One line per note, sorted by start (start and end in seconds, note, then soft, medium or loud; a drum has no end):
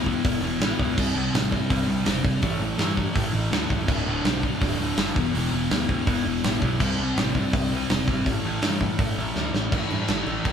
0.00 0.14 D2 loud
0.05 0.22 E2 loud
0.05 0.23 B2 loud
0.05 0.23 E3 loud
0.05 kick medium
0.23 0.38 E1 loud
0.23 0.40 E2 medium
0.23 0.41 B2 medium
0.23 0.42 E3 medium
0.23 kick loud
0.23 open hi-hat medium
0.41 0.55 E1 medium
0.41 0.59 E2 loud
0.41 0.60 B2 loud
0.41 0.61 E3 loud
0.59 0.73 A1 loud
0.59 0.77 E2 medium
0.59 0.78 B2 loud
0.59 0.79 E3 loud
0.59 snare loud
0.59 open hi-hat medium
0.79 0.93 C#2 loud
0.79 0.96 E2 medium
0.79 0.96 B2 medium
0.79 0.97 E3 medium
0.79 kick medium
0.97 1.11 C2 loud
0.97 1.14 C3 medium
0.97 1.15 G3 loud
0.97 1.15 C4 loud
0.97 kick loud
0.97 crash loud
1.15 1.29 C2 loud
1.15 1.33 C3 medium
1.15 1.33 G3 loud
1.15 1.34 C4 medium
1.33 1.60 A1 loud
1.33 1.51 C3 medium
1.33 1.51 G3 medium
1.33 1.52 C4 medium
1.33 snare loud
1.33 open hi-hat medium
1.52 1.69 C3 loud
1.52 1.69 G3 loud
1.52 1.70 C4 loud
1.52 kick medium
1.70 1.84 C2 medium
1.70 1.86 C3 medium
1.70 1.87 G3 medium
1.70 1.87 C4 loud
1.70 kick loud
1.70 open hi-hat medium
1.87 2.01 C2 loud
1.87 2.04 C3 loud
1.87 2.05 G3 loud
1.87 2.05 C4 loud
2.05 2.20 E1 loud
2.05 2.21 C3 medium
2.05 2.22 G3 medium
2.05 2.23 C4 loud
2.05 snare loud
2.05 open hi-hat medium
2.23 2.38 G1 loud
2.23 2.41 C3 medium
2.23 2.41 G3 loud
2.23 2.41 C4 medium
2.23 kick loud
2.42 2.56 A1 loud
2.42 2.59 A2 medium
2.42 2.60 E3 loud
2.42 2.61 A3 loud
2.42 kick loud
2.42 open hi-hat medium
2.60 2.74 A1 medium
2.60 2.76 A2 medium
2.60 2.77 E3 medium
2.60 2.78 A3 medium
2.77 3.06 G2 loud
2.77 2.94 A2 medium
2.77 2.95 E3 medium
2.77 2.95 A3 loud
2.77 snare loud
2.77 open hi-hat medium
2.95 3.13 A2 loud
2.95 3.14 E3 loud
2.95 3.14 A3 loud
2.95 kick medium
3.14 3.29 A1 loud
3.14 3.31 A2 medium
3.14 3.32 E3 medium
3.14 3.32 A3 loud
3.14 kick loud
3.14 open hi-hat medium
3.32 3.47 A1 loud
3.32 3.50 A2 loud
3.32 3.50 E3 loud
3.32 3.51 A3 loud
3.51 3.65 D2 medium
3.51 3.68 A2 medium
3.51 3.68 E3 medium
3.51 3.69 A3 medium
3.51 snare loud
3.51 open hi-hat medium
3.69 3.84 C#2 medium
3.69 3.86 A2 medium
3.69 3.87 E3 medium
3.69 3.87 A3 medium
3.69 kick loud
3.87 4.02 D1 loud
3.87 4.05 D2 medium
3.87 4.05 A2 medium
3.87 4.06 D3 medium
3.87 kick loud
3.87 crash medium
4.06 4.20 D1 medium
4.06 4.23 D2 medium
4.06 4.24 A2 medium
4.06 4.24 D3 loud
4.25 4.52 B1 loud
4.25 4.41 D2 medium
4.25 4.41 A2 medium
4.25 4.41 D3 loud
4.25 snare loud
4.25 open hi-hat medium
4.42 4.60 D2 loud
4.42 4.60 A2 loud
4.42 4.61 D3 loud
4.42 kick medium
4.61 4.75 D1 medium
4.61 4.79 D2 medium
4.61 4.79 A2 medium
4.61 4.79 D3 medium
4.61 kick loud
4.61 open hi-hat medium
4.79 4.92 D1 medium
4.79 4.97 D2 loud
4.79 4.98 A2 loud
4.79 4.98 D3 loud
4.97 5.11 F#1 loud
4.97 5.15 D2 medium
4.97 5.15 A2 medium
4.97 5.16 D3 medium
4.97 snare loud
4.97 open hi-hat medium
5.16 5.30 E1 loud
5.16 5.34 E2 medium
5.16 5.34 B2 loud
5.16 5.35 E3 loud
5.16 kick loud
5.35 5.48 E1 loud
5.35 5.51 E2 medium
5.35 5.51 B2 loud
5.35 5.53 E3 loud
5.35 open hi-hat medium
5.52 5.66 E1 loud
5.52 5.70 E2 medium
5.52 5.70 B2 medium
5.52 5.72 E3 loud
5.71 5.98 D2 loud
5.71 5.89 E2 medium
5.71 5.89 B2 medium
5.71 5.90 E3 loud
5.71 snare loud
5.71 open hi-hat medium
5.89 6.06 E2 loud
5.89 6.06 B2 loud
5.89 6.07 E3 loud
5.89 kick medium
6.07 6.20 E1 medium
6.07 6.24 E2 medium
6.07 6.24 B2 loud
6.07 6.26 E3 medium
6.07 kick loud
6.07 open hi-hat medium
6.26 6.39 E1 medium
6.26 6.42 E2 loud
6.26 6.43 B2 loud
6.26 6.44 E3 loud
6.44 6.57 A1 medium
6.44 6.60 E2 medium
6.44 6.60 B2 medium
6.44 6.62 E3 medium
6.44 snare loud
6.44 open hi-hat medium
6.61 6.76 B1 loud
6.61 6.78 E2 medium
6.61 6.79 B2 medium
6.61 6.81 E3 loud
6.61 kick medium
6.80 6.94 C2 loud
6.80 6.97 C3 medium
6.80 6.98 G3 medium
6.80 6.99 C4 loud
6.80 kick loud
6.80 crash loud
6.98 7.12 C2 medium
6.98 7.16 C3 medium
6.98 7.16 G3 medium
6.98 7.17 C4 loud
7.16 7.43 A1 loud
7.16 7.34 C3 medium
7.16 7.34 G3 medium
7.16 7.35 C4 loud
7.16 snare loud
7.16 open hi-hat medium
7.35 7.52 C3 loud
7.35 7.53 G3 loud
7.35 7.53 C4 loud
7.35 kick medium
7.53 7.67 C2 loud
7.53 7.71 C3 medium
7.53 7.71 G3 loud
7.53 7.72 C4 loud
7.53 kick loud
7.53 open hi-hat medium
7.70 7.84 C2 medium
7.70 7.89 C3 loud
7.70 7.90 G3 loud
7.70 7.90 C4 loud
7.89 8.03 E1 medium
7.89 8.08 C3 medium
7.89 8.08 G3 medium
7.89 8.08 C4 loud
7.89 snare loud
7.89 open hi-hat medium
8.08 8.21 G#1 loud
8.08 8.26 C3 medium
8.08 8.26 G3 loud
8.08 8.26 C4 loud
8.08 kick medium
8.26 8.40 A1 loud
8.26 8.43 A2 medium
8.26 8.44 E3 loud
8.26 8.45 A3 loud
8.26 kick loud
8.26 open hi-hat medium
8.44 8.58 A1 loud
8.44 8.63 A2 medium
8.44 8.63 E3 medium
8.44 8.63 A3 medium
8.62 8.90 G2 loud
8.62 8.81 A2 loud
8.62 8.81 E3 medium
8.62 8.82 A3 loud
8.62 snare loud
8.62 open hi-hat medium
8.81 8.99 A2 loud
8.81 9.00 E3 loud
8.81 9.00 A3 loud
8.81 kick medium
8.98 9.12 A1 medium
8.98 9.16 A2 medium
8.98 9.17 E3 medium
8.98 9.17 A3 loud
8.98 kick loud
8.98 open hi-hat medium
9.17 9.31 A1 medium
9.17 9.34 A2 loud
9.17 9.35 E3 loud
9.17 9.35 A3 loud
9.36 9.49 D2 loud
9.36 9.53 A2 medium
9.36 9.53 E3 medium
9.36 9.54 A3 medium
9.36 snare medium
9.54 9.68 A1 loud
9.54 9.71 A2 medium
9.54 9.71 E3 medium
9.54 9.72 A3 medium
9.54 snare medium
9.72 9.84 A1 loud
9.72 9.91 A2 medium
9.72 9.91 E3 medium
9.72 9.91 A3 medium
9.72 kick loud
9.72 crash medium
9.90 10.02 G2 medium
9.90 10.10 A2 medium
9.90 10.10 E3 medium
9.90 10.10 A3 medium
9.90 crash medium
10.08 10.21 A1 loud
10.08 10.28 A2 medium
10.08 10.28 E3 loud
10.08 10.28 A3 loud
10.08 snare loud
10.08 crash medium
10.26 10.38 A1 loud
10.26 10.44 A2 medium
10.26 10.45 E3 medium
10.26 10.46 A3 medium
10.26 crash medium
10.45 10.52 C#2 medium
10.45 10.52 A2 loud
10.45 10.52 E3 medium
10.45 10.52 A3 loud
10.45 kick loud
10.45 crash medium